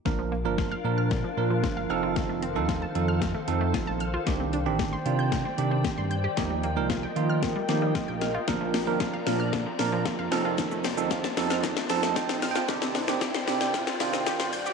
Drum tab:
HH |----------------|x-x-x-x-x-x-x-x-|x-x-x-x-x-x-x-x-|x-x-x-x-x-x-x-x-|
SH |----------------|----------------|----------------|----------------|
SD |o---o---o---o---|o---o---o---o---|o---o---o---o---|o---o---o-o-o-o-|
BD |o---o---o---o---|o---o---o---o---|o---o---o---o---|o---o---o---o---|

HH |x-o-x-o-x-o-x-o-|x-o-x-o-x-o-x-o-|x-o-x-o-x-o-x-o-|
SH |----------------|xxxxxxxxxxxxxxxx|xxxxxxxxxxxxxxxx|
SD |o-o-o-o-o-o-o-o-|o-o-oooooooooooo|oooooooooooooo--|
BD |o---o---o---o---|o---o---o---o---|o---o---o-------|